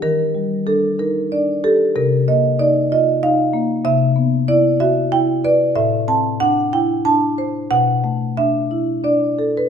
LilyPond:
\new Staff \with { instrumentName = "Marimba" } { \time 3/4 \key c \lydian \tempo 4 = 94 << { bes'4 a'8 bes'8 d''8 a'8 | bes'8 ees''8 d''8 ees''8 f''4 | e''4 d''8 e''8 g''8 d''8 | e''8 a''8 fis''8 g''8 a''4 |
fis''4 e''4 d''8. b'16 | } \\ { ees8 g8 d'8 ees'8 d'8 g'8 | c8 bes8 ees'8 f'8 ees'8 bes8 | c8 b8 e'8 fis'8 e'8 b'8 | a,8 c'8 d'8 e'8 d'8 c''8 |
b,8 a8 d'8 e'8 d'8 a'8 | } >> }